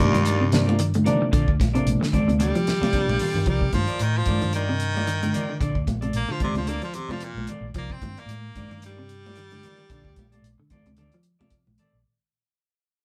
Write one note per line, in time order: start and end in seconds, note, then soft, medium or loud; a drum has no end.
0.00 0.76 D#2 loud
0.00 0.11 G2 medium
0.00 0.20 C3 loud
0.00 0.20 F3 medium
0.00 0.20 A#3 medium
0.00 0.21 D4 loud
0.00 0.16 D#4 medium
0.00 0.16 F4 medium
0.00 0.16 A#4 medium
0.00 0.16 D5 medium
0.13 1.04 G2 medium
0.13 0.36 D#3 medium
0.13 closed hi-hat soft
0.13 high conga medium
0.24 0.42 D#4 medium
0.24 0.42 F4 medium
0.24 0.42 A#4 medium
0.24 0.43 D5 medium
0.24 closed hi-hat medium
0.41 0.63 C3 medium
0.52 0.79 C3 medium
0.52 0.79 F3 medium
0.52 0.79 A#3 medium
0.52 0.80 D4 medium
0.52 snare medium
0.52 closed hi-hat medium
0.52 low conga medium
0.66 0.82 F4 soft
0.66 0.82 A#4 medium
0.66 0.81 D5 medium
0.66 high conga medium
0.79 0.92 D#3 medium
0.79 closed hi-hat medium
0.94 1.17 D3 medium
0.94 closed hi-hat soft
0.94 high conga medium
1.04 1.32 C3 medium
1.04 1.32 F3 medium
1.04 1.33 A#3 medium
1.04 1.33 D4 medium
1.04 1.22 D#4 medium
1.04 1.22 A#4 medium
1.04 1.23 D5 medium
1.04 closed hi-hat soft
1.04 low conga medium
1.22 muted clean electric guitar stroke medium
1.31 1.45 A#1 medium
1.31 1.55 D3 medium
1.31 1.49 C4 medium
1.31 1.49 F4 medium
1.31 1.50 A4 medium
1.31 1.50 D5 medium
1.31 kick medium
1.31 closed hi-hat medium
1.48 1.58 D2 medium
1.48 kick medium
1.60 1.82 A#1 medium
1.60 kick medium
1.60 snare soft
1.60 closed hi-hat soft
1.60 high conga medium
1.74 2.01 C3 medium
1.74 1.97 C3 medium
1.74 2.01 F3 medium
1.74 2.01 A#3 medium
1.74 2.02 D4 medium
1.74 1.89 F4 soft
1.74 1.89 A4 medium
1.74 1.89 D5 medium
1.74 closed hi-hat soft
1.84 1.98 A#1 medium
1.84 closed hi-hat medium
1.84 high conga medium
2.01 2.23 D3 medium
2.01 snare medium
2.12 2.25 F2 medium
2.12 2.29 C4 medium
2.12 2.30 A4 medium
2.12 2.30 D5 medium
2.12 kick medium
2.12 closed hi-hat soft
2.12 high conga medium
2.12 low conga medium
2.27 2.50 D2 medium
2.27 2.60 C3 medium
2.27 2.38 C3 medium
2.27 2.61 F3 medium
2.27 2.61 A#3 medium
2.27 2.61 D4 medium
2.27 closed hi-hat soft
2.27 high conga medium
2.39 3.44 G3 medium
2.39 2.56 C4 medium
2.39 2.56 F4 medium
2.39 2.56 A4 medium
2.39 2.57 D5 medium
2.39 muted clean electric guitar stroke medium
2.39 closed hi-hat medium
2.39 low conga medium
2.55 2.77 F3 medium
2.55 closed hi-hat soft
2.67 snare medium
2.67 closed hi-hat soft
2.67 low conga medium
2.80 3.04 F2 medium
2.80 3.03 C3 medium
2.80 2.96 F4 soft
2.80 2.96 A4 soft
2.80 2.95 D5 soft
2.80 snare soft
2.80 high conga medium
2.93 3.20 C3 medium
2.93 3.20 F3 medium
2.93 3.20 A#3 medium
2.93 3.21 D4 medium
2.93 kick medium
2.93 closed hi-hat medium
3.08 3.18 A#1 medium
3.08 high conga medium
3.19 3.37 C4 medium
3.19 3.37 F4 medium
3.19 3.37 A4 medium
3.19 open hi-hat medium
3.19 low conga medium
3.34 3.44 G2 medium
3.34 low conga loud
3.46 3.59 C2 medium
3.46 3.69 F3 medium
3.46 3.73 G3 medium
3.46 3.63 D#4 medium
3.46 3.63 F4 medium
3.46 3.64 A#4 medium
3.46 3.64 D5 medium
3.46 kick medium
3.46 closed hi-hat medium
3.61 3.71 C3 medium
3.61 kick medium
3.73 3.85 G2 medium
3.73 3.95 D#3 medium
3.73 4.04 F3 medium
3.73 kick medium
3.73 closed hi-hat soft
3.73 high conga medium
3.87 4.03 F4 soft
3.87 4.03 A#4 soft
3.87 4.02 D5 medium
3.87 muted fingered electric bass stroke soft
3.87 closed hi-hat soft
3.99 4.23 A2 medium
3.99 4.19 D#3 medium
3.99 closed hi-hat medium
4.18 4.54 F3 medium
4.26 4.39 G2 medium
4.26 4.43 D#4 medium
4.26 4.43 F4 medium
4.26 4.44 A#4 medium
4.26 4.44 D5 medium
4.26 kick medium
4.26 closed hi-hat medium
4.26 high conga medium
4.26 low conga medium
4.41 5.33 G2 medium
4.41 4.64 D#3 medium
4.41 closed hi-hat soft
4.53 5.58 D#3 medium
4.53 4.70 D#4 medium
4.53 4.71 F4 medium
4.53 4.70 A#4 medium
4.53 4.71 D5 medium
4.53 closed hi-hat medium
4.69 4.91 C3 medium
4.80 closed hi-hat medium
4.94 5.10 F4 soft
4.94 5.09 D5 soft
4.94 muted clean electric guitar stroke soft
4.94 high conga medium
5.07 5.19 D#3 medium
5.07 closed hi-hat medium
5.22 5.44 D3 medium
5.22 closed hi-hat soft
5.22 high conga medium
5.33 5.50 F4 medium
5.33 5.51 A#4 medium
5.33 5.51 D5 medium
5.33 closed hi-hat medium
5.33 low conga medium
5.50 5.59 D3 medium
5.60 5.73 A#1 medium
5.60 5.83 D3 medium
5.60 5.77 C4 medium
5.60 5.77 F4 medium
5.60 5.78 A4 medium
5.60 5.78 D5 medium
5.60 kick medium
5.60 closed hi-hat medium
5.75 5.85 D2 medium
5.75 kick medium
5.87 6.10 A#1 medium
5.87 kick medium
5.87 closed hi-hat soft
5.87 high conga medium
6.01 6.25 C3 medium
6.01 6.17 F4 soft
6.01 6.17 A4 soft
6.01 6.16 D5 soft
6.01 closed hi-hat soft
6.01 high conga medium
6.13 6.27 A#1 medium
6.13 6.33 A#3 medium
6.13 closed hi-hat medium
6.29 6.51 D3 medium
6.29 6.41 F3 medium
6.29 muted fingered electric bass stroke soft
6.40 6.53 F2 medium
6.40 6.56 C3 medium
6.40 6.58 F4 medium
6.40 6.58 A4 medium
6.40 6.58 D5 medium
6.40 muted clean electric guitar stroke soft
6.40 kick medium
6.40 closed hi-hat soft
6.40 high conga medium
6.40 low conga medium
6.54 6.78 D2 medium
6.54 6.66 C3 medium
6.54 6.70 F3 medium
6.54 closed hi-hat soft
6.54 high conga medium
6.67 6.80 D3 medium
6.67 6.82 A#3 medium
6.67 6.84 C4 medium
6.67 6.85 F4 medium
6.67 6.85 A4 medium
6.67 6.85 D5 medium
6.67 closed hi-hat medium
6.82 7.05 F3 medium
6.82 6.96 F3 medium
6.82 closed hi-hat soft
6.94 7.14 C3 medium
6.94 closed hi-hat soft
6.94 low conga medium
7.08 7.32 F2 medium
7.08 7.31 C3 medium
7.08 7.24 F4 soft
7.08 7.24 A4 soft
7.08 7.23 D5 soft
7.08 high conga medium
7.12 7.25 F3 medium
7.20 7.48 A#2 medium
7.20 closed hi-hat medium
7.35 7.46 A#1 medium
7.35 high conga medium
7.47 7.65 C4 soft
7.47 7.65 F4 medium
7.47 7.65 A4 medium
7.47 7.66 D5 medium
7.47 closed hi-hat soft
7.47 low conga medium
7.61 7.72 A#1 medium
7.74 7.87 C2 medium
7.74 7.98 F3 medium
7.74 7.94 A#3 medium
7.74 7.92 D#4 medium
7.74 7.92 F4 medium
7.74 7.92 A#4 soft
7.74 7.92 D5 medium
7.74 kick medium
7.74 closed hi-hat medium
7.90 8.00 C3 medium
7.90 8.21 C4 medium
7.90 kick medium
8.01 8.14 G2 medium
8.01 8.24 D#3 medium
8.01 kick medium
8.01 closed hi-hat soft
8.01 high conga medium
8.15 8.32 F4 soft
8.15 8.32 A#4 soft
8.15 8.32 D5 soft
8.15 muted fingered electric bass stroke soft
8.15 closed hi-hat soft
8.19 8.82 A#3 medium
8.26 8.50 A2 medium
8.26 closed hi-hat medium
8.30 high conga medium
8.55 8.68 G2 medium
8.55 8.73 D#4 medium
8.55 8.73 F4 medium
8.55 8.73 A#4 medium
8.55 8.73 D5 medium
8.55 kick medium
8.55 closed hi-hat soft
8.55 high conga medium
8.55 low conga medium
8.68 9.61 G2 medium
8.68 8.93 D#3 medium
8.68 closed hi-hat soft
8.82 10.41 G3 loud
8.82 9.00 D#4 medium
8.82 9.00 F4 medium
8.82 9.00 A#4 medium
8.82 9.00 D5 medium
8.82 closed hi-hat medium
8.98 9.20 C3 medium
9.09 closed hi-hat medium
9.25 9.40 F4 soft
9.25 9.40 A#4 soft
9.25 9.39 D5 soft
9.25 high conga medium
9.36 9.49 D#3 medium
9.36 closed hi-hat medium
9.50 9.74 D3 medium
9.50 closed hi-hat soft
9.50 high conga medium
9.63 9.80 D#4 medium
9.63 9.80 F4 medium
9.63 9.80 A#4 medium
9.63 9.81 D5 medium
9.63 closed hi-hat soft
9.63 low conga medium
9.79 9.88 D#3 medium
9.89 10.02 A#1 medium
9.89 10.13 D3 medium
9.89 10.07 F4 medium
9.89 10.07 A4 medium
9.89 10.07 D5 medium
9.89 muted clean electric guitar stroke medium
9.89 kick medium
9.89 closed hi-hat medium
10.05 10.15 D2 medium
10.05 kick medium
10.16 10.40 A#1 medium
10.16 kick medium
10.16 closed hi-hat soft
10.16 high conga medium
10.32 10.47 F4 soft
10.32 10.47 A4 soft
10.32 10.46 D5 medium
10.32 closed hi-hat soft
10.32 high conga medium
10.42 10.55 A#1 medium
10.42 closed hi-hat medium
10.59 10.81 D3 medium
10.59 muted fingered electric bass stroke soft
10.70 10.83 F2 medium
10.70 10.88 C4 medium
10.70 10.88 F4 medium
10.70 10.88 A4 medium
10.70 10.88 D5 medium
10.70 kick medium
10.70 closed hi-hat soft
10.70 high conga medium
10.70 low conga medium
10.85 11.08 D2 medium
10.85 10.96 C3 medium
10.85 closed hi-hat soft
10.85 high conga medium
10.97 11.10 D3 medium
10.97 11.14 C4 medium
10.97 11.15 F4 medium
10.97 11.15 A4 medium
10.97 11.15 D5 medium
10.97 closed hi-hat medium
10.97 low conga medium
11.12 11.36 F3 medium
11.12 closed hi-hat soft
11.23 closed hi-hat soft
11.39 11.63 F2 medium
11.39 11.63 C3 medium
11.39 11.55 F4 soft
11.39 11.54 A4 soft
11.39 11.54 D5 soft
11.39 high conga medium
11.50 kick medium
11.50 closed hi-hat medium
11.67 11.77 A#1 medium
11.67 high conga medium
11.78 11.95 C4 medium
11.78 11.96 A4 medium
11.78 11.96 D5 medium
11.78 closed hi-hat soft
11.78 low conga medium
11.93 12.03 A#1 medium